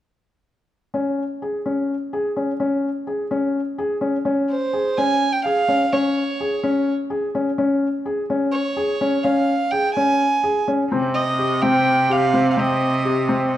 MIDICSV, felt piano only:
0, 0, Header, 1, 2, 480
1, 0, Start_track
1, 0, Tempo, 474684
1, 950, Time_signature, 7, 3, 24, 8
1, 13726, End_track
2, 0, Start_track
2, 0, Title_t, "Felt piano"
2, 0, Program_c, 0, 0
2, 948, Note_on_c, 0, 61, 54
2, 1232, Note_off_c, 0, 61, 0
2, 1437, Note_on_c, 0, 68, 43
2, 1576, Note_off_c, 0, 68, 0
2, 1675, Note_on_c, 0, 61, 49
2, 1956, Note_off_c, 0, 61, 0
2, 2155, Note_on_c, 0, 68, 55
2, 2294, Note_off_c, 0, 68, 0
2, 2391, Note_on_c, 0, 61, 53
2, 2531, Note_off_c, 0, 61, 0
2, 2627, Note_on_c, 0, 61, 57
2, 2910, Note_off_c, 0, 61, 0
2, 3105, Note_on_c, 0, 68, 45
2, 3246, Note_off_c, 0, 68, 0
2, 3346, Note_on_c, 0, 61, 60
2, 3629, Note_off_c, 0, 61, 0
2, 3826, Note_on_c, 0, 68, 62
2, 3967, Note_off_c, 0, 68, 0
2, 4055, Note_on_c, 0, 61, 58
2, 4199, Note_off_c, 0, 61, 0
2, 4298, Note_on_c, 0, 61, 59
2, 4583, Note_off_c, 0, 61, 0
2, 4787, Note_on_c, 0, 68, 47
2, 4927, Note_off_c, 0, 68, 0
2, 5035, Note_on_c, 0, 61, 59
2, 5315, Note_off_c, 0, 61, 0
2, 5516, Note_on_c, 0, 68, 56
2, 5653, Note_off_c, 0, 68, 0
2, 5747, Note_on_c, 0, 61, 54
2, 5887, Note_off_c, 0, 61, 0
2, 5995, Note_on_c, 0, 61, 61
2, 6275, Note_off_c, 0, 61, 0
2, 6477, Note_on_c, 0, 68, 52
2, 6614, Note_off_c, 0, 68, 0
2, 6708, Note_on_c, 0, 61, 62
2, 6990, Note_off_c, 0, 61, 0
2, 7181, Note_on_c, 0, 68, 62
2, 7323, Note_off_c, 0, 68, 0
2, 7430, Note_on_c, 0, 61, 62
2, 7570, Note_off_c, 0, 61, 0
2, 7667, Note_on_c, 0, 61, 66
2, 7949, Note_off_c, 0, 61, 0
2, 8146, Note_on_c, 0, 68, 53
2, 8287, Note_off_c, 0, 68, 0
2, 8392, Note_on_c, 0, 61, 57
2, 8673, Note_off_c, 0, 61, 0
2, 8864, Note_on_c, 0, 68, 61
2, 9006, Note_off_c, 0, 68, 0
2, 9110, Note_on_c, 0, 61, 57
2, 9251, Note_off_c, 0, 61, 0
2, 9347, Note_on_c, 0, 61, 61
2, 9631, Note_off_c, 0, 61, 0
2, 9830, Note_on_c, 0, 68, 52
2, 9971, Note_off_c, 0, 68, 0
2, 10077, Note_on_c, 0, 61, 59
2, 10358, Note_off_c, 0, 61, 0
2, 10551, Note_on_c, 0, 68, 62
2, 10692, Note_off_c, 0, 68, 0
2, 10797, Note_on_c, 0, 61, 59
2, 10936, Note_off_c, 0, 61, 0
2, 11038, Note_on_c, 0, 60, 65
2, 11319, Note_off_c, 0, 60, 0
2, 11514, Note_on_c, 0, 67, 49
2, 11654, Note_off_c, 0, 67, 0
2, 11757, Note_on_c, 0, 60, 61
2, 12039, Note_off_c, 0, 60, 0
2, 12234, Note_on_c, 0, 67, 59
2, 12375, Note_off_c, 0, 67, 0
2, 12474, Note_on_c, 0, 60, 59
2, 12615, Note_off_c, 0, 60, 0
2, 12712, Note_on_c, 0, 60, 60
2, 12996, Note_off_c, 0, 60, 0
2, 13197, Note_on_c, 0, 67, 55
2, 13337, Note_off_c, 0, 67, 0
2, 13437, Note_on_c, 0, 60, 61
2, 13719, Note_off_c, 0, 60, 0
2, 13726, End_track
0, 0, End_of_file